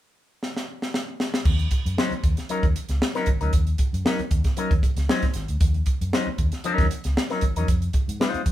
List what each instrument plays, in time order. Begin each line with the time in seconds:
0.43 snare
0.57 snare
0.82 snare
0.94 snare
1.20 snare
1.34 snare
1.45 fingered electric bass D#2, kick, crash
1.59 closed hi-hat
1.71 kick, closed hi-hat
1.86 fingered electric bass F#2, closed hi-hat
1.98 clean electric guitar F#3 C#4 D#4 C5, snare
2.11 muted fingered electric bass stroke, closed hi-hat
2.24 fingered electric bass D#2, kick, closed hi-hat
2.37 snare, closed hi-hat
2.49 clean electric guitar F#3 C#4 D#4 A#4, closed hi-hat
2.63 fingered electric bass D#2, kick, closed hi-hat
2.76 closed hi-hat
2.89 fingered electric bass C#2, snare, closed hi-hat
3.02 snare
3.15 clean electric guitar F#3 C#4 D#4 A#4, snare, closed hi-hat
3.26 fingered electric bass G#1, kick, closed hi-hat
3.41 fingered electric bass D2, clean electric guitar F#3 C#4 D#4 A#4, closed hi-hat
3.53 fingered electric bass D#2, kick, closed hi-hat
3.67 closed hi-hat
3.78 kick, closed hi-hat
3.93 fingered electric bass F#2, closed hi-hat
4.05 clean electric guitar F#3 C#4 D#4 A#4, snare
4.19 muted fingered electric bass stroke, closed hi-hat
4.31 fingered electric bass D#2, kick, closed hi-hat
4.44 kick, snare, closed hi-hat
4.57 clean electric guitar F#3 C#4 D#4 A#4, closed hi-hat
4.71 fingered electric bass D#2, kick, closed hi-hat
4.83 kick, closed hi-hat
4.97 fingered electric bass C#2, snare, closed hi-hat
5.09 clean electric guitar F#3 C#4 D#4 C5, snare
5.22 kick, snare, closed hi-hat
5.34 fingered electric bass G#1, snare, closed hi-hat
5.48 fingered electric bass D2, closed hi-hat
5.61 fingered electric bass D#2, kick, closed hi-hat
5.74 closed hi-hat
5.86 kick, closed hi-hat
6.01 fingered electric bass F#2, closed hi-hat
6.13 clean electric guitar F#3 C#4 D#4 C5, snare
6.27 muted fingered electric bass stroke
6.38 fingered electric bass D#2, kick, closed hi-hat
6.52 snare, closed hi-hat
6.64 clean electric guitar F#3 C#4 D#4 A#4, closed hi-hat
6.78 fingered electric bass D#2, kick, snare, closed hi-hat
6.91 closed hi-hat
7.04 fingered electric bass C#2, snare, closed hi-hat
7.17 snare
7.30 clean electric guitar F#3 C#4 D#4 A#4, snare, closed hi-hat
7.41 fingered electric bass G#1, kick, closed hi-hat
7.56 fingered electric bass E2, clean electric guitar F#3 C#4 D#4 A#4, closed hi-hat
7.68 fingered electric bass F2, kick, closed hi-hat
7.82 closed hi-hat
7.93 kick, closed hi-hat
8.08 fingered electric bass G#2, closed hi-hat
8.20 clean electric guitar G#3 D#4 F4 C5, snare
8.34 muted fingered electric bass stroke, closed hi-hat
8.46 fingered electric bass F2, kick, closed hi-hat